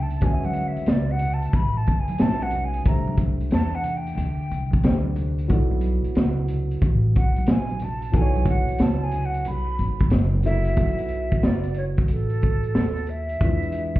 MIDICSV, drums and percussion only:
0, 0, Header, 1, 2, 480
1, 0, Start_track
1, 0, Tempo, 659341
1, 163, Time_signature, 4, 2, 24, 8
1, 10190, End_track
2, 0, Start_track
2, 0, Title_t, "Drums"
2, 74, Note_on_c, 9, 42, 52
2, 80, Note_on_c, 9, 82, 43
2, 147, Note_off_c, 9, 42, 0
2, 152, Note_off_c, 9, 82, 0
2, 152, Note_on_c, 9, 42, 80
2, 159, Note_on_c, 9, 36, 115
2, 164, Note_on_c, 9, 82, 60
2, 225, Note_off_c, 9, 42, 0
2, 232, Note_off_c, 9, 36, 0
2, 237, Note_off_c, 9, 82, 0
2, 316, Note_on_c, 9, 42, 33
2, 325, Note_on_c, 9, 63, 83
2, 325, Note_on_c, 9, 82, 60
2, 388, Note_off_c, 9, 42, 0
2, 388, Note_on_c, 9, 42, 78
2, 398, Note_off_c, 9, 63, 0
2, 398, Note_off_c, 9, 82, 0
2, 410, Note_on_c, 9, 63, 42
2, 410, Note_on_c, 9, 82, 47
2, 461, Note_off_c, 9, 42, 0
2, 482, Note_off_c, 9, 63, 0
2, 482, Note_off_c, 9, 82, 0
2, 555, Note_on_c, 9, 42, 48
2, 567, Note_on_c, 9, 82, 46
2, 628, Note_off_c, 9, 42, 0
2, 628, Note_on_c, 9, 42, 88
2, 639, Note_on_c, 9, 38, 100
2, 640, Note_off_c, 9, 82, 0
2, 647, Note_on_c, 9, 82, 55
2, 701, Note_off_c, 9, 42, 0
2, 712, Note_off_c, 9, 38, 0
2, 720, Note_off_c, 9, 82, 0
2, 802, Note_on_c, 9, 82, 51
2, 867, Note_on_c, 9, 42, 83
2, 875, Note_off_c, 9, 82, 0
2, 884, Note_on_c, 9, 64, 58
2, 884, Note_on_c, 9, 82, 37
2, 940, Note_off_c, 9, 42, 0
2, 957, Note_off_c, 9, 64, 0
2, 957, Note_off_c, 9, 82, 0
2, 1035, Note_on_c, 9, 42, 54
2, 1043, Note_on_c, 9, 82, 49
2, 1108, Note_off_c, 9, 42, 0
2, 1113, Note_on_c, 9, 42, 87
2, 1116, Note_off_c, 9, 82, 0
2, 1116, Note_on_c, 9, 36, 105
2, 1122, Note_on_c, 9, 64, 69
2, 1122, Note_on_c, 9, 82, 70
2, 1186, Note_off_c, 9, 42, 0
2, 1189, Note_off_c, 9, 36, 0
2, 1195, Note_off_c, 9, 64, 0
2, 1195, Note_off_c, 9, 82, 0
2, 1283, Note_on_c, 9, 82, 39
2, 1356, Note_off_c, 9, 82, 0
2, 1359, Note_on_c, 9, 42, 64
2, 1367, Note_on_c, 9, 36, 85
2, 1368, Note_on_c, 9, 82, 49
2, 1431, Note_off_c, 9, 42, 0
2, 1440, Note_off_c, 9, 36, 0
2, 1440, Note_off_c, 9, 82, 0
2, 1513, Note_on_c, 9, 42, 53
2, 1523, Note_on_c, 9, 63, 71
2, 1523, Note_on_c, 9, 82, 47
2, 1585, Note_off_c, 9, 42, 0
2, 1590, Note_on_c, 9, 42, 88
2, 1596, Note_off_c, 9, 63, 0
2, 1596, Note_off_c, 9, 82, 0
2, 1598, Note_on_c, 9, 38, 111
2, 1611, Note_on_c, 9, 82, 63
2, 1662, Note_off_c, 9, 42, 0
2, 1671, Note_off_c, 9, 38, 0
2, 1684, Note_off_c, 9, 82, 0
2, 1762, Note_on_c, 9, 63, 61
2, 1762, Note_on_c, 9, 82, 44
2, 1826, Note_on_c, 9, 42, 72
2, 1835, Note_off_c, 9, 63, 0
2, 1835, Note_off_c, 9, 82, 0
2, 1842, Note_on_c, 9, 64, 65
2, 1842, Note_on_c, 9, 82, 46
2, 1899, Note_off_c, 9, 42, 0
2, 1915, Note_off_c, 9, 64, 0
2, 1915, Note_off_c, 9, 82, 0
2, 1992, Note_on_c, 9, 42, 54
2, 1995, Note_on_c, 9, 82, 43
2, 2065, Note_off_c, 9, 42, 0
2, 2068, Note_off_c, 9, 82, 0
2, 2071, Note_on_c, 9, 82, 56
2, 2077, Note_on_c, 9, 42, 90
2, 2080, Note_on_c, 9, 36, 111
2, 2144, Note_off_c, 9, 82, 0
2, 2150, Note_off_c, 9, 42, 0
2, 2153, Note_off_c, 9, 36, 0
2, 2240, Note_on_c, 9, 63, 75
2, 2240, Note_on_c, 9, 82, 56
2, 2309, Note_on_c, 9, 42, 85
2, 2312, Note_on_c, 9, 36, 90
2, 2313, Note_off_c, 9, 63, 0
2, 2313, Note_off_c, 9, 82, 0
2, 2322, Note_on_c, 9, 63, 43
2, 2322, Note_on_c, 9, 82, 44
2, 2382, Note_off_c, 9, 42, 0
2, 2385, Note_off_c, 9, 36, 0
2, 2395, Note_off_c, 9, 63, 0
2, 2395, Note_off_c, 9, 82, 0
2, 2479, Note_on_c, 9, 42, 45
2, 2479, Note_on_c, 9, 82, 52
2, 2552, Note_off_c, 9, 42, 0
2, 2552, Note_off_c, 9, 82, 0
2, 2553, Note_on_c, 9, 42, 83
2, 2564, Note_on_c, 9, 38, 99
2, 2565, Note_on_c, 9, 82, 58
2, 2626, Note_off_c, 9, 42, 0
2, 2637, Note_off_c, 9, 38, 0
2, 2637, Note_off_c, 9, 82, 0
2, 2715, Note_on_c, 9, 82, 54
2, 2788, Note_off_c, 9, 82, 0
2, 2794, Note_on_c, 9, 42, 77
2, 2796, Note_on_c, 9, 64, 59
2, 2796, Note_on_c, 9, 82, 41
2, 2867, Note_off_c, 9, 42, 0
2, 2868, Note_off_c, 9, 64, 0
2, 2868, Note_off_c, 9, 82, 0
2, 2946, Note_on_c, 9, 82, 53
2, 2960, Note_on_c, 9, 42, 54
2, 3019, Note_off_c, 9, 82, 0
2, 3022, Note_on_c, 9, 64, 70
2, 3022, Note_on_c, 9, 82, 64
2, 3033, Note_off_c, 9, 42, 0
2, 3039, Note_on_c, 9, 42, 82
2, 3095, Note_off_c, 9, 64, 0
2, 3095, Note_off_c, 9, 82, 0
2, 3112, Note_off_c, 9, 42, 0
2, 3182, Note_on_c, 9, 82, 39
2, 3255, Note_off_c, 9, 82, 0
2, 3264, Note_on_c, 9, 82, 50
2, 3286, Note_on_c, 9, 42, 65
2, 3336, Note_off_c, 9, 82, 0
2, 3359, Note_off_c, 9, 42, 0
2, 3426, Note_on_c, 9, 63, 69
2, 3426, Note_on_c, 9, 82, 49
2, 3441, Note_on_c, 9, 42, 48
2, 3446, Note_on_c, 9, 36, 93
2, 3499, Note_off_c, 9, 63, 0
2, 3499, Note_off_c, 9, 82, 0
2, 3510, Note_on_c, 9, 82, 59
2, 3514, Note_off_c, 9, 42, 0
2, 3519, Note_off_c, 9, 36, 0
2, 3519, Note_on_c, 9, 42, 94
2, 3528, Note_on_c, 9, 38, 121
2, 3582, Note_off_c, 9, 82, 0
2, 3592, Note_off_c, 9, 42, 0
2, 3600, Note_off_c, 9, 38, 0
2, 3670, Note_on_c, 9, 63, 65
2, 3670, Note_on_c, 9, 82, 44
2, 3743, Note_off_c, 9, 63, 0
2, 3743, Note_off_c, 9, 82, 0
2, 3755, Note_on_c, 9, 64, 71
2, 3755, Note_on_c, 9, 82, 47
2, 3757, Note_on_c, 9, 42, 76
2, 3828, Note_off_c, 9, 64, 0
2, 3828, Note_off_c, 9, 82, 0
2, 3829, Note_off_c, 9, 42, 0
2, 3906, Note_on_c, 9, 82, 48
2, 3920, Note_on_c, 9, 42, 60
2, 3978, Note_off_c, 9, 82, 0
2, 3993, Note_off_c, 9, 42, 0
2, 3993, Note_on_c, 9, 82, 69
2, 4000, Note_on_c, 9, 42, 88
2, 4003, Note_on_c, 9, 36, 107
2, 4066, Note_off_c, 9, 82, 0
2, 4073, Note_off_c, 9, 42, 0
2, 4076, Note_off_c, 9, 36, 0
2, 4157, Note_on_c, 9, 63, 84
2, 4157, Note_on_c, 9, 82, 56
2, 4229, Note_on_c, 9, 42, 77
2, 4230, Note_off_c, 9, 63, 0
2, 4230, Note_off_c, 9, 82, 0
2, 4238, Note_on_c, 9, 63, 46
2, 4238, Note_on_c, 9, 82, 46
2, 4302, Note_off_c, 9, 42, 0
2, 4311, Note_off_c, 9, 63, 0
2, 4311, Note_off_c, 9, 82, 0
2, 4399, Note_on_c, 9, 82, 47
2, 4400, Note_on_c, 9, 42, 47
2, 4472, Note_off_c, 9, 82, 0
2, 4473, Note_off_c, 9, 42, 0
2, 4479, Note_on_c, 9, 42, 85
2, 4483, Note_on_c, 9, 82, 60
2, 4490, Note_on_c, 9, 38, 107
2, 4552, Note_off_c, 9, 42, 0
2, 4556, Note_off_c, 9, 82, 0
2, 4562, Note_off_c, 9, 38, 0
2, 4638, Note_on_c, 9, 82, 47
2, 4710, Note_off_c, 9, 82, 0
2, 4718, Note_on_c, 9, 42, 86
2, 4728, Note_on_c, 9, 64, 56
2, 4728, Note_on_c, 9, 82, 43
2, 4791, Note_off_c, 9, 42, 0
2, 4800, Note_off_c, 9, 64, 0
2, 4800, Note_off_c, 9, 82, 0
2, 4884, Note_on_c, 9, 82, 49
2, 4886, Note_on_c, 9, 42, 55
2, 4957, Note_off_c, 9, 82, 0
2, 4959, Note_off_c, 9, 42, 0
2, 4962, Note_on_c, 9, 64, 66
2, 4962, Note_on_c, 9, 82, 67
2, 4963, Note_on_c, 9, 36, 108
2, 4965, Note_on_c, 9, 42, 83
2, 5035, Note_off_c, 9, 64, 0
2, 5035, Note_off_c, 9, 82, 0
2, 5036, Note_off_c, 9, 36, 0
2, 5038, Note_off_c, 9, 42, 0
2, 5126, Note_on_c, 9, 82, 39
2, 5199, Note_off_c, 9, 82, 0
2, 5209, Note_on_c, 9, 42, 65
2, 5213, Note_on_c, 9, 82, 51
2, 5214, Note_on_c, 9, 36, 90
2, 5282, Note_off_c, 9, 42, 0
2, 5286, Note_off_c, 9, 36, 0
2, 5286, Note_off_c, 9, 82, 0
2, 5360, Note_on_c, 9, 42, 51
2, 5373, Note_on_c, 9, 63, 69
2, 5373, Note_on_c, 9, 82, 47
2, 5433, Note_off_c, 9, 42, 0
2, 5435, Note_on_c, 9, 42, 86
2, 5444, Note_on_c, 9, 38, 113
2, 5446, Note_off_c, 9, 63, 0
2, 5446, Note_off_c, 9, 82, 0
2, 5456, Note_on_c, 9, 82, 59
2, 5508, Note_off_c, 9, 42, 0
2, 5517, Note_off_c, 9, 38, 0
2, 5529, Note_off_c, 9, 82, 0
2, 5602, Note_on_c, 9, 42, 35
2, 5614, Note_on_c, 9, 63, 63
2, 5614, Note_on_c, 9, 82, 47
2, 5674, Note_off_c, 9, 42, 0
2, 5675, Note_on_c, 9, 42, 74
2, 5687, Note_off_c, 9, 63, 0
2, 5687, Note_off_c, 9, 82, 0
2, 5693, Note_on_c, 9, 64, 71
2, 5693, Note_on_c, 9, 82, 50
2, 5747, Note_off_c, 9, 42, 0
2, 5766, Note_off_c, 9, 64, 0
2, 5766, Note_off_c, 9, 82, 0
2, 5839, Note_on_c, 9, 42, 57
2, 5848, Note_on_c, 9, 82, 47
2, 5912, Note_off_c, 9, 42, 0
2, 5920, Note_off_c, 9, 82, 0
2, 5921, Note_on_c, 9, 42, 89
2, 5923, Note_on_c, 9, 36, 110
2, 5929, Note_on_c, 9, 82, 65
2, 5994, Note_off_c, 9, 42, 0
2, 5996, Note_off_c, 9, 36, 0
2, 6002, Note_off_c, 9, 82, 0
2, 6083, Note_on_c, 9, 42, 35
2, 6089, Note_on_c, 9, 63, 77
2, 6089, Note_on_c, 9, 82, 58
2, 6154, Note_off_c, 9, 42, 0
2, 6154, Note_on_c, 9, 42, 83
2, 6156, Note_on_c, 9, 36, 92
2, 6162, Note_off_c, 9, 63, 0
2, 6162, Note_off_c, 9, 82, 0
2, 6168, Note_on_c, 9, 63, 43
2, 6168, Note_on_c, 9, 82, 43
2, 6227, Note_off_c, 9, 42, 0
2, 6228, Note_off_c, 9, 36, 0
2, 6240, Note_off_c, 9, 63, 0
2, 6240, Note_off_c, 9, 82, 0
2, 6321, Note_on_c, 9, 42, 50
2, 6324, Note_on_c, 9, 82, 50
2, 6394, Note_off_c, 9, 42, 0
2, 6395, Note_on_c, 9, 42, 87
2, 6397, Note_off_c, 9, 82, 0
2, 6405, Note_on_c, 9, 38, 115
2, 6409, Note_on_c, 9, 82, 60
2, 6467, Note_off_c, 9, 42, 0
2, 6478, Note_off_c, 9, 38, 0
2, 6482, Note_off_c, 9, 82, 0
2, 6563, Note_on_c, 9, 82, 51
2, 6634, Note_on_c, 9, 42, 79
2, 6636, Note_off_c, 9, 82, 0
2, 6646, Note_on_c, 9, 64, 61
2, 6646, Note_on_c, 9, 82, 45
2, 6707, Note_off_c, 9, 42, 0
2, 6719, Note_off_c, 9, 64, 0
2, 6719, Note_off_c, 9, 82, 0
2, 6798, Note_on_c, 9, 82, 50
2, 6800, Note_on_c, 9, 42, 52
2, 6870, Note_off_c, 9, 82, 0
2, 6873, Note_off_c, 9, 42, 0
2, 6878, Note_on_c, 9, 42, 86
2, 6884, Note_on_c, 9, 63, 50
2, 6884, Note_on_c, 9, 64, 70
2, 6884, Note_on_c, 9, 82, 61
2, 6951, Note_off_c, 9, 42, 0
2, 6956, Note_off_c, 9, 63, 0
2, 6956, Note_off_c, 9, 64, 0
2, 6956, Note_off_c, 9, 82, 0
2, 7043, Note_on_c, 9, 82, 40
2, 7115, Note_off_c, 9, 82, 0
2, 7125, Note_on_c, 9, 42, 68
2, 7125, Note_on_c, 9, 82, 46
2, 7198, Note_off_c, 9, 42, 0
2, 7198, Note_off_c, 9, 82, 0
2, 7277, Note_on_c, 9, 42, 49
2, 7284, Note_on_c, 9, 36, 94
2, 7292, Note_on_c, 9, 63, 62
2, 7292, Note_on_c, 9, 82, 44
2, 7350, Note_off_c, 9, 42, 0
2, 7355, Note_on_c, 9, 42, 88
2, 7357, Note_off_c, 9, 36, 0
2, 7364, Note_on_c, 9, 38, 114
2, 7365, Note_off_c, 9, 63, 0
2, 7365, Note_off_c, 9, 82, 0
2, 7372, Note_on_c, 9, 82, 59
2, 7428, Note_off_c, 9, 42, 0
2, 7436, Note_off_c, 9, 38, 0
2, 7445, Note_off_c, 9, 82, 0
2, 7525, Note_on_c, 9, 63, 68
2, 7525, Note_on_c, 9, 82, 47
2, 7592, Note_on_c, 9, 42, 70
2, 7598, Note_off_c, 9, 63, 0
2, 7598, Note_off_c, 9, 82, 0
2, 7606, Note_on_c, 9, 38, 36
2, 7609, Note_on_c, 9, 64, 70
2, 7609, Note_on_c, 9, 82, 48
2, 7665, Note_off_c, 9, 42, 0
2, 7679, Note_off_c, 9, 38, 0
2, 7682, Note_off_c, 9, 64, 0
2, 7682, Note_off_c, 9, 82, 0
2, 7752, Note_on_c, 9, 42, 62
2, 7763, Note_on_c, 9, 82, 44
2, 7825, Note_off_c, 9, 42, 0
2, 7835, Note_off_c, 9, 82, 0
2, 7838, Note_on_c, 9, 42, 77
2, 7841, Note_on_c, 9, 36, 107
2, 7910, Note_off_c, 9, 42, 0
2, 7914, Note_off_c, 9, 36, 0
2, 7997, Note_on_c, 9, 42, 52
2, 8069, Note_off_c, 9, 42, 0
2, 8069, Note_on_c, 9, 42, 74
2, 8142, Note_off_c, 9, 42, 0
2, 8236, Note_on_c, 9, 42, 44
2, 8240, Note_on_c, 9, 36, 93
2, 8309, Note_off_c, 9, 42, 0
2, 8313, Note_off_c, 9, 36, 0
2, 8323, Note_on_c, 9, 38, 104
2, 8396, Note_off_c, 9, 38, 0
2, 8470, Note_on_c, 9, 42, 50
2, 8542, Note_off_c, 9, 42, 0
2, 8548, Note_on_c, 9, 42, 76
2, 8621, Note_off_c, 9, 42, 0
2, 8717, Note_on_c, 9, 42, 52
2, 8722, Note_on_c, 9, 36, 92
2, 8790, Note_off_c, 9, 42, 0
2, 8795, Note_off_c, 9, 36, 0
2, 8795, Note_on_c, 9, 42, 88
2, 8868, Note_off_c, 9, 42, 0
2, 8952, Note_on_c, 9, 42, 42
2, 9025, Note_off_c, 9, 42, 0
2, 9043, Note_on_c, 9, 42, 65
2, 9050, Note_on_c, 9, 36, 86
2, 9116, Note_off_c, 9, 42, 0
2, 9123, Note_off_c, 9, 36, 0
2, 9195, Note_on_c, 9, 42, 47
2, 9268, Note_off_c, 9, 42, 0
2, 9282, Note_on_c, 9, 38, 109
2, 9355, Note_off_c, 9, 38, 0
2, 9438, Note_on_c, 9, 42, 48
2, 9511, Note_off_c, 9, 42, 0
2, 9513, Note_on_c, 9, 42, 66
2, 9585, Note_off_c, 9, 42, 0
2, 9676, Note_on_c, 9, 42, 53
2, 9749, Note_off_c, 9, 42, 0
2, 9759, Note_on_c, 9, 42, 78
2, 9761, Note_on_c, 9, 36, 110
2, 9832, Note_off_c, 9, 42, 0
2, 9834, Note_off_c, 9, 36, 0
2, 9918, Note_on_c, 9, 42, 55
2, 9989, Note_off_c, 9, 42, 0
2, 9989, Note_on_c, 9, 42, 84
2, 10062, Note_off_c, 9, 42, 0
2, 10157, Note_on_c, 9, 42, 47
2, 10161, Note_on_c, 9, 36, 90
2, 10190, Note_off_c, 9, 36, 0
2, 10190, Note_off_c, 9, 42, 0
2, 10190, End_track
0, 0, End_of_file